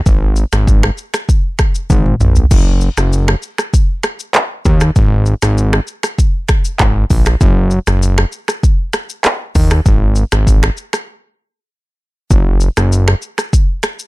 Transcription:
0.06 analog synth bass G#1, kick, shaker
0.36 shaker
0.52 analog synth bass G#1, finger snap, cross-stick, shaker
0.67 kick, shaker
0.83 finger snap, cross-stick
0.98 shaker
1.14 finger snap, cross-stick, shaker
1.29 kick, shaker
1.59 finger snap, kick, cross-stick, shaker
1.75 shaker
1.90 analog synth bass G#1, kick, high tom, shaker
2.06 mid tom
2.20 analog synth bass A#1, mid tom, shaker
2.36 floor tom, shaker
2.51 analog synth bass F#1, kick, crash, shaker
2.81 shaker
2.97 analog synth bass F#1, finger snap, cross-stick, shaker
3.13 shaker
3.28 finger snap, cross-stick
3.43 shaker
3.58 finger snap, cross-stick, shaker
3.74 kick, shaker
4.03 finger snap, cross-stick, shaker
4.20 shaker
4.34 finger snap, cross-stick, clap, shaker
4.65 analog synth bass D#2, kick, shaker
4.80 finger snap, cross-stick, shaker
4.96 analog synth bass G#1, kick, shaker
5.26 shaker
5.42 analog synth bass G#1, finger snap, cross-stick, shaker
5.58 shaker
5.73 finger snap, cross-stick
5.87 shaker
6.03 finger snap, cross-stick, shaker
6.18 kick, shaker
6.49 finger snap, kick, cross-stick, shaker
6.65 shaker
6.79 analog synth bass G#1, finger snap, kick, cross-stick, clap, shaker
7.10 analog synth bass A#1, kick, open hi-hat, shaker
7.25 finger snap, cross-stick, shaker
7.41 analog synth bass F#1, kick, shaker
7.71 shaker
7.87 analog synth bass F#1, finger snap, cross-stick, shaker
8.03 shaker
8.18 finger snap, cross-stick
8.32 shaker
8.48 finger snap, cross-stick, shaker
8.63 kick, shaker
8.93 finger snap, cross-stick, shaker
9.10 shaker
9.24 finger snap, cross-stick, clap, shaker
9.55 analog synth bass D#2, kick, open hi-hat, shaker
9.70 finger snap, cross-stick, shaker
9.86 analog synth bass G#1, kick, shaker
10.16 shaker
10.32 analog synth bass G#1, finger snap, cross-stick, shaker
10.47 kick, shaker
10.63 finger snap, cross-stick
10.77 shaker
10.93 finger snap, cross-stick, shaker
12.31 analog synth bass F#1, kick, shaker
12.60 shaker
12.77 analog synth bass F#1, finger snap, cross-stick, shaker
12.92 shaker
13.08 finger snap, cross-stick
13.22 shaker
13.38 finger snap, cross-stick, shaker
13.53 kick, shaker
13.83 finger snap, cross-stick, shaker
13.99 shaker

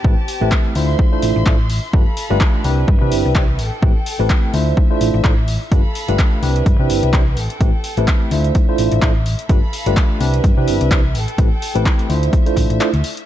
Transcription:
Already playing: violin section C4 G4 A5
0.04 fingered electric bass A1, tine electric piano A3 C4 E4 G4 B4, kick
0.28 open hi-hat
0.41 fingered electric bass A1, tine electric piano A3 C4 E4 G4 B4
0.52 kick, clap
0.75 fingered electric bass D2, tine electric piano A3 D4 E4 F4 C5, violin section E5 C6, open hi-hat
0.99 kick
1.12 tine electric piano A3 D4 E4 F4 C5
1.22 fingered electric bass A1, open hi-hat
1.36 fingered electric bass A1
1.46 tine electric piano A3 D4 E4 F4 C5, kick, clap
1.70 open hi-hat
1.93 fingered electric bass G1, tine electric piano A3 D4 F4 G4 B4, violin section A4 F5 B5, kick
2.17 open hi-hat
2.30 fingered electric bass G1, tine electric piano A3 D4 F4 G4 B4
2.41 kick, clap
2.64 fingered electric bass C2, tine electric piano C4 D4 E4 G4 B4, violin section B4 E5, open hi-hat
2.88 fingered electric bass G2, kick
3.01 fingered electric bass C3, tine electric piano C4 D4 E4 G4 B4
3.12 fingered electric bass G1, open hi-hat
3.25 fingered electric bass C2
3.35 tine electric piano C4 D4 E4 G4 B4, kick, clap
3.59 fingered electric bass A1, violin section A4 G5, open hi-hat
3.82 fingered electric bass A1, tine electric piano A3 C4 E4 G4 B4, kick
4.06 open hi-hat
4.19 fingered electric bass A1, tine electric piano A3 C4 E4 G4 B4
4.30 kick, clap
4.53 fingered electric bass D2, tine electric piano A3 D4 E4 F4 C5, violin section E5, open hi-hat
4.77 kick
4.90 tine electric piano A3 D4 E4 F4 C5
5.01 fingered electric bass A1, open hi-hat
5.14 fingered electric bass A1
5.24 tine electric piano A3 D4 E4 F4 C5, kick, clap
5.48 open hi-hat
5.71 fingered electric bass G1, tine electric piano A3 D4 F4 G4 B4, violin section A4 F5 B5, kick, closed hi-hat
5.95 open hi-hat
6.08 fingered electric bass G1, tine electric piano A3 D4 F4 G4 B4, closed hi-hat
6.19 kick, clap, closed hi-hat
6.42 fingered electric bass C2, tine electric piano C4 D4 E4 G4 B4, violin section B4 E5, open hi-hat
6.56 closed hi-hat
6.66 fingered electric bass G2, kick, closed hi-hat
6.79 fingered electric bass C3, tine electric piano C4 D4 E4 G4 B4
6.90 fingered electric bass G1, open hi-hat
7.03 fingered electric bass C2, closed hi-hat
7.13 tine electric piano C4 D4 E4 G4 B4, kick, clap, closed hi-hat
7.37 fingered electric bass A1, violin section A4 G5, open hi-hat
7.50 closed hi-hat
7.61 fingered electric bass A1, tine electric piano A3 C4 E4 G4 B4, kick, closed hi-hat
7.84 open hi-hat
7.97 fingered electric bass A1, tine electric piano A3 C4 E4 G4 B4, closed hi-hat
8.08 kick, clap, closed hi-hat
8.31 fingered electric bass D2, tine electric piano A3 D4 E4 F4 C5, violin section E5, open hi-hat
8.44 closed hi-hat
8.55 kick, closed hi-hat
8.68 tine electric piano A3 D4 E4 F4 C5
8.78 fingered electric bass A1, open hi-hat
8.92 fingered electric bass A1, closed hi-hat
9.02 tine electric piano A3 D4 E4 F4 C5, kick, clap, closed hi-hat
9.26 open hi-hat
9.39 closed hi-hat
9.49 fingered electric bass G1, tine electric piano A3 D4 F4 G4 B4, violin section A4 F5 B5, kick, closed hi-hat
9.73 open hi-hat
9.86 fingered electric bass G1, tine electric piano A3 D4 F4 G4 B4, closed hi-hat
9.97 kick, clap, closed hi-hat
10.20 fingered electric bass C2, tine electric piano C4 D4 E4 G4 B4, violin section B4 E5, open hi-hat
10.34 closed hi-hat
10.44 fingered electric bass G2, kick, closed hi-hat
10.57 fingered electric bass C3, tine electric piano C4 D4 E4 G4 B4
10.68 fingered electric bass G1, open hi-hat
10.81 fingered electric bass C2, closed hi-hat
10.91 tine electric piano C4 D4 E4 G4 B4, kick, clap, closed hi-hat
11.15 fingered electric bass A1, violin section A4 G5, open hi-hat
11.28 closed hi-hat
11.38 fingered electric bass A1, tine electric piano A3 C4 E4 G4 B4, kick, closed hi-hat
11.62 open hi-hat
11.75 fingered electric bass A1, tine electric piano A3 C4 E4 G4 B4, closed hi-hat
11.86 kick, clap, closed hi-hat
11.99 closed hi-hat
12.09 fingered electric bass D2, tine electric piano A3 D4 E4 F4 C5, violin section E5, open hi-hat
12.23 closed hi-hat
12.33 kick, closed hi-hat
12.46 tine electric piano A3 D4 E4 F4 C5, closed hi-hat
12.57 fingered electric bass A1, kick, open hi-hat
12.70 fingered electric bass A1, closed hi-hat
12.80 tine electric piano A3 D4 E4 F4 C5, clap, closed hi-hat
12.93 fingered electric bass D2, closed hi-hat
13.04 open hi-hat
13.17 closed hi-hat

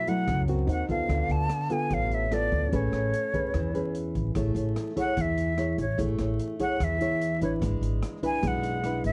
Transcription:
Already playing: nylon-string guitar B2, grand piano E4 A4 B4 F#5, flute E5
0.07 nylon-string guitar F#3 A3 E4, flute F#5, closed hi-hat
0.27 upright bass C#2, nylon-string guitar F#2, kick, cross-stick, closed hi-hat
0.48 nylon-string guitar C4 F#4 A#4, closed hi-hat
0.67 upright bass D#2, grand piano D#4 C5 F#5, flute F#5, closed hi-hat
0.89 upright bass D#2, nylon-string guitar B3 F4 A4, flute F5, kick, closed hi-hat
1.06 upright bass D2, nylon-string guitar D3, grand piano D4 A4 B4, kick, cross-stick, closed hi-hat
1.12 grand piano F5
1.28 upright bass D2, flute A5, closed hi-hat
1.49 cross-stick, closed hi-hat
1.70 nylon-string guitar B3 F4 A4, flute G#5, closed hi-hat
1.90 upright bass A1, nylon-string guitar A2, flute F5, kick, closed hi-hat
2.11 flute E5, closed hi-hat
2.31 nylon-string guitar B3 F4 A4, flute D5, cross-stick, closed hi-hat
2.52 upright bass D2, kick, closed hi-hat
2.69 upright bass A1, nylon-string guitar A3 C#4 G#4, grand piano C#4, kick, closed hi-hat
2.73 grand piano B4 G#5, nylon-string guitar B4, flute C#5
2.92 upright bass A1, cross-stick, closed hi-hat
3.14 closed hi-hat
3.34 nylon-string guitar C#4 G#4 B4, kick, closed hi-hat
3.54 upright bass E2, nylon-string guitar E3, kick, cross-stick, closed hi-hat
3.74 nylon-string guitar C#4 G#4 B4, closed hi-hat
3.95 closed hi-hat
4.15 upright bass A1, kick, closed hi-hat
4.35 upright bass A1, nylon-string guitar A3 E4 G#4 C#5, kick, cross-stick, closed hi-hat
4.55 upright bass A1, closed hi-hat
4.76 cross-stick, closed hi-hat
4.96 nylon-string guitar E4 G#4 C#5, flute F#5, kick, closed hi-hat
5.17 upright bass E2, nylon-string guitar E3, kick, closed hi-hat
5.21 flute E5
5.38 closed hi-hat
5.58 nylon-string guitar E4 G#4 C#5, cross-stick, closed hi-hat
5.78 upright bass A1, flute C#5, kick, closed hi-hat
5.98 upright bass A1, nylon-string guitar A3 E4 G#4 C#5, kick, closed hi-hat
6.18 upright bass A1, cross-stick, closed hi-hat
6.40 closed hi-hat
6.60 nylon-string guitar E4 G#4 C#5, flute F#5, kick, closed hi-hat
6.80 upright bass E2, nylon-string guitar E3, kick, cross-stick, closed hi-hat
6.84 flute E5
7.01 nylon-string guitar E4 G#4 C#5, closed hi-hat
7.21 closed hi-hat
7.41 upright bass A1, nylon-string guitar D4 E4 B4, flute C#5, kick, closed hi-hat
7.61 upright bass G#1, nylon-string guitar G#3, kick, cross-stick, closed hi-hat
7.81 upright bass G#1, closed hi-hat
8.03 cross-stick, closed hi-hat
8.23 nylon-string guitar D4 E4 B4, flute G#5, kick, closed hi-hat
8.43 upright bass B1, nylon-string guitar G#3, kick, closed hi-hat
8.47 flute F#5
8.63 closed hi-hat
8.84 nylon-string guitar D4 E4 B4, cross-stick, closed hi-hat
9.04 upright bass G#1, flute E5, kick, closed hi-hat

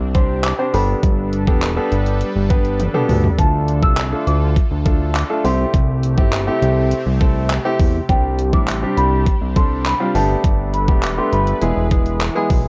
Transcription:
Already playing: analog synth pad C3 C4 D4 G4, marimba D6
0.00 analog synth bass C2
0.15 grand piano C4 D4 G4 C5, kick, closed hi-hat
0.44 marimba D6, clap, closed hi-hat
0.59 grand piano C4 D4 G4 C5
0.74 analog synth bass G1, analog synth pad G3 D4 A4 B4, grand piano B3 D4 G4 A4, marimba B5, open hi-hat
1.03 analog synth bass G1, kick, closed hi-hat
1.33 closed hi-hat
1.47 analog synth bass E1, grand piano B3 D4 G4 A4, kick
1.62 clap, closed hi-hat
1.76 grand piano B3 D4 G4 A4
1.92 analog synth bass G1, closed hi-hat
2.06 closed hi-hat
2.21 closed hi-hat
2.36 analog synth bass G1
2.50 grand piano B3 D4 G4 B4, kick, closed hi-hat
2.65 closed hi-hat
2.80 closed hi-hat, high tom
2.94 grand piano B3 D4 G4 A4, mid tom
3.09 analog synth bass D2, mid tom, open hi-hat
3.24 floor tom
3.38 analog synth bass D2, analog synth pad D3 F4 A4, grand piano A3 D4 F4 A4, marimba A5, kick, closed hi-hat
3.68 closed hi-hat
3.82 analog synth bass C2, grand piano A3 D4 F4 A4, marimba E6, kick
3.97 clap, closed hi-hat
4.12 grand piano A3 D4 F4 A4
4.27 analog synth bass D2, marimba D6, closed hi-hat
4.56 kick, closed hi-hat
4.71 analog synth bass D2
4.85 grand piano A3 D4 F4 A4, kick, closed hi-hat
5.15 marimba D6, clap, closed hi-hat
5.30 grand piano A3 D4 F4 A4
5.44 analog synth bass C2, analog synth pad C3 A3 C4 G4, grand piano A3 C4 E4 G4, marimba C6, open hi-hat
5.74 analog synth bass C2, kick, closed hi-hat
6.03 closed hi-hat
6.18 analog synth bass G1, grand piano A3 C4 E4 G4, kick
6.33 clap, closed hi-hat
6.47 grand piano A3 C4 E4 G4
6.62 analog synth bass C2, closed hi-hat
6.91 closed hi-hat
7.06 analog synth bass C2
7.21 grand piano A3 C4 E4 A4, kick, closed hi-hat
7.50 clap, closed hi-hat
7.65 grand piano A3 C4 E4 G4
7.79 analog synth bass E2, kick, open hi-hat
8.09 analog synth bass C2, grand piano G3 C4 D4 G4, analog synth pad C4 D4 G4, marimba G5, kick, closed hi-hat
8.39 closed hi-hat
8.53 analog synth bass A1, grand piano G3 C4 D4 E4, marimba D6, kick
8.68 clap, closed hi-hat
8.82 grand piano G3 C4 D4 G4
8.97 analog synth bass C2, marimba B5, closed hi-hat
9.26 kick, closed hi-hat
9.41 analog synth bass C2
9.56 grand piano G3 C4 D4 A4, marimba C6, kick, closed hi-hat
9.85 marimba B5, clap, closed hi-hat
10.00 grand piano G3 C4 D4 F4
10.15 analog synth bass G1, analog synth pad G3 A4 B4, grand piano A3 B3 D4 G4, marimba A5, open hi-hat
10.44 analog synth bass G1, kick, closed hi-hat
10.74 marimba B5, closed hi-hat
10.88 analog synth bass E1, grand piano A3 B3 D4 G4, kick
11.03 marimba D6, clap, closed hi-hat
11.17 grand piano A3 B3 D4 G4, marimba C6
11.32 analog synth bass G1, marimba B5, closed hi-hat
11.47 closed hi-hat
11.62 analog synth bass E1, analog synth pad E3 E4 G#4, grand piano G#3 B3 E4 G#4, closed hi-hat
11.77 analog synth bass E1
11.91 grand piano G#3 B3 E4 G#4, kick, closed hi-hat
12.06 closed hi-hat
12.21 clap, closed hi-hat
12.35 grand piano G#3 B3 E4 G#4
12.50 analog synth bass B1, kick, open hi-hat

